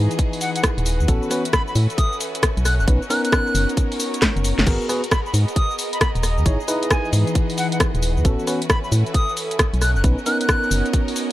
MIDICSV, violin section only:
0, 0, Header, 1, 2, 480
1, 0, Start_track
1, 0, Tempo, 447761
1, 1162, Time_signature, 4, 2, 24, 8
1, 12136, End_track
2, 0, Start_track
2, 0, Title_t, "Violin section"
2, 0, Program_c, 0, 48
2, 0, Note_on_c, 0, 59, 79
2, 0, Note_on_c, 0, 66, 76
2, 0, Note_on_c, 0, 68, 97
2, 0, Note_on_c, 0, 75, 73
2, 1122, Note_off_c, 0, 75, 0
2, 1124, Note_off_c, 0, 59, 0
2, 1143, Note_off_c, 0, 68, 0
2, 1161, Note_on_c, 0, 61, 86
2, 1161, Note_on_c, 0, 71, 91
2, 1162, Note_on_c, 0, 64, 76
2, 2825, Note_off_c, 0, 64, 0
2, 2825, Note_off_c, 0, 71, 0
2, 2842, Note_on_c, 0, 70, 91
2, 2843, Note_on_c, 0, 63, 70
2, 4964, Note_off_c, 0, 61, 0
2, 4981, Note_off_c, 0, 63, 0
2, 5003, Note_on_c, 0, 59, 88
2, 5006, Note_on_c, 0, 75, 76
2, 6881, Note_off_c, 0, 70, 0
2, 6904, Note_off_c, 0, 59, 0
2, 6921, Note_on_c, 0, 59, 85
2, 6921, Note_on_c, 0, 68, 88
2, 8799, Note_off_c, 0, 66, 0
2, 8806, Note_off_c, 0, 75, 0
2, 8823, Note_off_c, 0, 59, 0
2, 8823, Note_off_c, 0, 68, 0
2, 8845, Note_on_c, 0, 64, 74
2, 8847, Note_on_c, 0, 61, 85
2, 8847, Note_on_c, 0, 66, 80
2, 8848, Note_on_c, 0, 71, 94
2, 10507, Note_off_c, 0, 64, 0
2, 10508, Note_off_c, 0, 66, 0
2, 10508, Note_off_c, 0, 71, 0
2, 10525, Note_on_c, 0, 75, 75
2, 10527, Note_on_c, 0, 66, 71
2, 10528, Note_on_c, 0, 70, 92
2, 12136, Note_off_c, 0, 61, 0
2, 12136, Note_off_c, 0, 66, 0
2, 12136, Note_off_c, 0, 70, 0
2, 12136, Note_off_c, 0, 75, 0
2, 12136, End_track
0, 0, End_of_file